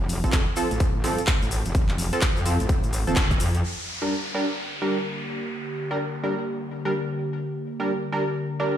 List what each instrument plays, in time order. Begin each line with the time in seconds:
Already playing: wobble bass F1
0.09 open hi-hat, shaker
0.24 wobble bass F1, synth stab F3 C4 A4, kick, closed hi-hat, shaker
0.32 kick, clap, closed hi-hat, shaker
0.56 synth stab F3 C4 A4, open hi-hat, shaker
0.71 wobble bass A1, closed hi-hat, shaker
0.80 kick, closed hi-hat, shaker
1.04 synth stab F3 C4 A4, open hi-hat, shaker
1.18 closed hi-hat, shaker
1.27 kick, clap, closed hi-hat, shaker
1.42 wobble bass A1, shaker
1.51 open hi-hat, shaker
1.65 wobble bass F1, closed hi-hat, shaker
1.75 wobble bass F1, kick, closed hi-hat, shaker
1.89 clap, closed hi-hat
1.98 open hi-hat, shaker
2.13 synth stab F3 C4 A4, closed hi-hat, shaker
2.21 kick, clap, closed hi-hat, shaker
2.36 wobble bass F2, shaker
2.46 wobble bass F2, synth stab F3 C4 A4, open hi-hat, shaker
2.60 wobble bass A1, closed hi-hat, shaker
2.69 kick, closed hi-hat, shaker
2.83 closed hi-hat, shaker
2.93 open hi-hat, shaker
3.07 wobble bass D#1, synth stab F3 C4 A4, closed hi-hat, shaker
3.16 kick, clap, closed hi-hat, shaker
3.31 kick, closed hi-hat, shaker
3.40 wobble bass F2, open hi-hat, shaker
3.54 closed hi-hat, shaker
3.64 analog synth pad D3 A#3 G4, crash, downlifter
4.02 synth stab G3 D4 A#4
4.34 synth stab G3 D4 A#4
4.82 synth stab G3 D4 A#4
5.91 synth stab G3 D4 A#4
6.23 synth stab G3 D4 A#4
6.85 synth stab G3 D4 A#4
7.80 synth stab G3 D4 A#4
8.12 synth stab G3 D4 A#4
8.60 synth stab G3 D4 A#4